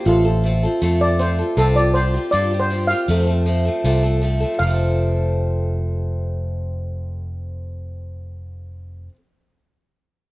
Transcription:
0.05 A1 A3 C4 F4 A4
0.25 C4 F4 A4
0.44 A3 C4 F4 A4
0.63 C4 F4 A4
0.82 F2 A3 C4 F4 A4
1.01 C4 F4 A4 D5
1.19 A3 C4 F4 A4 C5
1.39 C4 F4 A4
1.57 C2 C3 F3 C4 F4 G4 A4
1.76 C4 F4 G4 D5
1.94 F3 C4 F4 G4 C5
2.14 C4 F4 G4
2.31 G2 C3 F3 C4 F4 G4 D5
2.51 C4 F4 G4
2.60 C5
2.70 F3 C4 F4 G4
2.87 F4 G4 F5
2.92 C4
3.08 F2 C3 F3 A3 C4 A4
3.27 F3 A3 C4 A4
3.46 F3 A3 C4 A4
3.65 F3 A3 C4 A4
3.84 C2 F2 C3 F3 A3 C4 A4
4.03 F3 A3 C4 A4
4.21 F3 A3 C4 A4
4.40 F3 A3 C4 A4
4.54 F2
4.59 F1 C3 F5
4.63 F3 A3
4.70 C4 A4

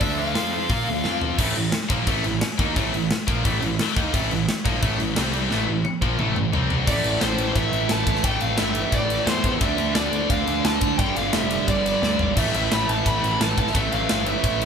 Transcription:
0.00 D2 D3 A3 D4 E5, kick, open hi-hat
0.19 F5
0.35 F2 F3 C4 F4, snare, open hi-hat
0.69 A#2 A#3 F4 A#4, kick, open hi-hat
0.87 D2 D3 A3
1.04 F2 F3 C4 F4, snare
1.21 floor tom
1.38 A1 A2 E3 A3, kick, crash
1.56 A1 A2 E3, crash
1.72 snare, crash
1.81 snare
1.89 A#1 A#2 F3 A#3, kick, crash
2.06 A1 A2 E3 A3, kick, crash
2.24 A1 A2 E3, crash
2.41 snare, crash
2.58 D#2 D#3 A#3 D#4, kick, crash
2.75 A1 A2 E3 A3, kick, crash
2.93 A1 A2 E3, crash
3.11 snare, crash
3.27 A#1 A#2 F3 A#3, kick, crash
3.45 A1 A2 E3 A3, kick, crash
3.61 A1 A2 E3, crash
3.79 snare, crash
3.88 snare
3.96 D#2 D#3 A#3 D#4, kick, crash
4.14 A1 A2 E3 A3, kick, crash
4.31 A1 A2 E3, crash
4.49 snare, crash
4.65 A#1 A#2 F3 A#3, kick, crash
4.82 A1 A2 E3 A3, kick, crash
4.99 A1 A2 E3, crash
5.16 C2 C3 G3 C4, snare, crash
5.33 crash
5.51 A1 A2 E3 A3, snare
5.67 A1 A2 E3
5.85 high tom
6.02 A#1 A#2 F3 A#3, kick
6.19 A1 A2 E3 A3, mid tom
6.36 A1 A2 E3, mid tom
6.53 C2 C3 G3 C4, floor tom
6.70 floor tom
6.86 A1 A2 E3 A3 D5, kick, crash
7.04 A1, ride
7.21 A1 C5, snare, ride
7.38 A1, ride
7.55 A1 E5, kick, ride
7.73 A1, ride
7.89 A1 A5, snare, ride
8.07 A1, kick, ride
8.15 snare
8.23 A1 A2 E3 A3 G5, kick, ride
8.41 A1 F5, ride
8.58 G1 E5, snare, ride
8.75 ride
8.92 A1 D5, kick, ride
9.10 ride
9.26 E2 C5, snare, ride
9.44 E2, kick, ride
9.60 D2 D3 A3 D4 E5, kick, ride
9.78 D2, ride
9.95 D2 D5, snare, ride
10.13 D2, ride
10.30 D2 F5, kick, ride
10.47 D2, ride
10.65 D2 A5, snare, ride
10.81 D2, kick, ride
10.98 G1 G2 D3 G3 G5, kick, ride
11.16 G1 F5, ride
11.33 F1 E5, snare, ride
11.51 ride
11.68 G1 D5, kick, ride
11.86 ride
12.02 D2 D5, snare
12.19 G#1, floor tom
12.36 A1 A2 E3 A3 E5, kick, splash, crash
12.54 A1 E5, ride
12.72 A1 B5, snare, ride
12.88 A1 A5, ride
13.06 A1 B5, kick, ride
13.23 A1, ride
13.40 A1 A5, snare, ride
13.58 A1 A5, kick, ride
13.67 snare
13.74 A1 A2 E3 A3 E5, kick, ride
13.92 A1 F5, ride
14.09 G1, snare, ride
14.26 E5, ride
14.44 A1, kick, ride
14.62 ride

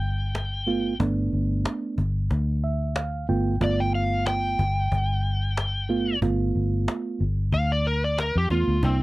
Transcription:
Already playing: G1 G5
0.02 cajon slap
0.35 cajon slap
0.67 A3 B3 F4, cajon slap
0.99 G1 A3 B3 D4, cajon bass
1.33 G1, cajon slap
1.65 cajon slap
1.98 G1, cajon bass
2.31 D2, cajon bass, cajon slap
2.63 E5, cajon slap
2.96 F5, cajon slap
3.28 G1 A3 B3 F4 G5, cajon slap
3.61 G1 A3 B3 F4 D5, cajon bass
3.80 G5
3.93 F5, cajon slap
4.26 G5, cajon slap
4.59 G1, cajon bass
4.92 G1, cajon bass
5.25 cajon slap
5.57 cajon slap
5.89 A3 B3 F4, cajon slap
6.22 G1 A3 B3 F4, cajon bass
6.55 G1, cajon slap
6.88 cajon slap
7.20 G1, cajon slap
7.52 D2 F5, cajon bass
7.72 D5
7.85 A#4, cajon slap
8.04 D5
8.18 A#4, cajon slap
8.36 F2 G4
8.50 E2 A3 B3 F4, cajon bass
8.68 D2
8.83 C2 A#3 C4 D4 E4, cajon bass

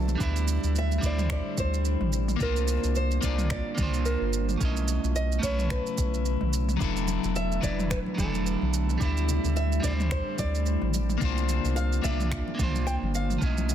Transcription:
Already playing: B1 D3 F#3 A3 B3 D4 E4 A4
0.08 mid tom, shaker
0.15 G3 D4
0.20 D2 G3 C4 E4 E5, kick, shaker
0.36 shaker
0.48 shaker
0.64 D2, shaker
0.76 E5, shaker
0.92 shaker
0.98 G3 D4
1.03 D2 E4 C5 D5, kick, shaker
1.18 mid tom, shaker
1.30 D5, finger snap, kick, shaker
1.58 D2 C5, kick, shaker
1.74 shaker
1.85 shaker
2.01 A1, mid tom
2.13 shaker
2.28 mid tom, shaker
2.36 C2 A#3 D4, shaker
2.40 G3 A#3 F4 A#4 C5, kick
2.56 shaker
2.68 shaker
2.84 C2, shaker
2.96 C5, shaker
3.11 shaker
3.21 C2 A#3 D4 F4 D5, kick, shaker
3.38 mid tom, shaker
3.50 D5, finger snap, kick, shaker
3.75 C2 A#3 D4, kick, mid tom, shaker
3.80 F4 C5
3.94 shaker
4.05 A#4, shaker
4.21 G1
4.33 shaker
4.49 mid tom, shaker
4.58 B1 C#3 F#3 A3 B3 C#4 E4, kick, shaker
4.63 E4 D#5
4.77 shaker
4.88 shaker
5.04 B1, shaker
5.16 D#5, shaker
5.32 shaker
5.39 A3 C#4 C#5, kick
5.43 B1 E4 B4, shaker
5.59 mid tom, shaker
5.70 B4, finger snap, kick, shaker
5.86 shaker
5.98 B1, kick, shaker
6.14 shaker
6.25 shaker
6.41 B1, mid tom
6.53 shaker
6.69 mid tom, shaker
6.77 D3 F#3 D4, kick
6.81 E1 E4 A4, shaker
6.97 shaker
7.07 muted conga, shaker
7.24 E1, low conga, shaker
7.36 E5, shaker
7.52 shaker
7.61 E1 F#3 D4 E4 B4 D5, kick, muted conga, low conga, shaker
7.79 mid tom, shaker
7.90 B4, finger snap, kick, shaker
8.06 muted conga
8.15 E1 F#3 D4, kick, mid tom
8.19 E4 A4, shaker
8.34 high conga, shaker
8.46 shaker
8.62 B1, high conga
8.74 shaker
8.89 mid tom, shaker
8.98 D2 G3 D4, kick, shaker
9.02 D3 C4 E4 E5
9.17 shaker
9.28 muted conga, low conga, shaker
9.44 D2, low conga, shaker
9.56 E5, shaker
9.72 shaker
9.80 D2 G3 D4 D5, kick, muted conga, low conga, shaker
9.85 E4 C5
9.98 mid tom, muted conga, shaker
10.11 C5, finger snap, kick, shaker
10.39 D2 D5, kick, high conga, shaker
10.55 shaker
10.66 shaker
10.82 A1, mid tom
10.94 high conga, shaker
11.09 mid tom, shaker
11.18 C2 A#3 D4 F4, kick, shaker
11.23 F4 C5
11.38 shaker
11.49 muted conga, shaker
11.65 C2, low conga, shaker
11.76 F5, shaker
11.93 shaker
12.02 C2 A#3 D4 F4 D5 E5, kick, muted conga, low conga, shaker
12.20 mid tom, shaker
12.32 finger snap, kick, shaker
12.48 muted conga
12.55 A#3 D4
12.59 C2 F4 C5, kick, mid tom, shaker
12.75 high conga, shaker
12.87 G5, shaker
13.03 G1, high conga
13.15 F5, shaker
13.30 mid tom, shaker
13.38 B1 C#3 F#3 A3 B3 C#4 E4, kick, shaker
13.43 E4 D#5
13.58 high conga, shaker
13.69 muted conga, low conga, shaker

